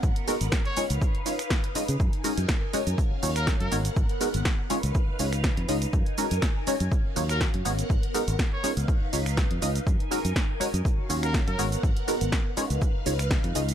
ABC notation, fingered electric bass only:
X:1
M:4/4
L:1/16
Q:"Swing 16ths" 1/4=122
K:F#
V:1 name="Fingered electric bass" clef=bass
G,,, z2 G,,, z3 C,, z6 z C, | F,, z2 F,, z3 F,, z2 D,,2 z F,, G,,, z | G,,, z2 G,,, z3 C,, z2 C,,2 z E,, C,, z | F,, z2 F,, z3 F,, z2 D,,2 z F,, G,,, z |
G,,, z2 G,,, z3 C,, z2 C,,2 z E,, C,, z | F,, z2 F,, z3 F,, z2 D,,2 z F,, G,,, z | G,,, z2 G,,, z3 C,, z2 C,,2 z E,, C,, z |]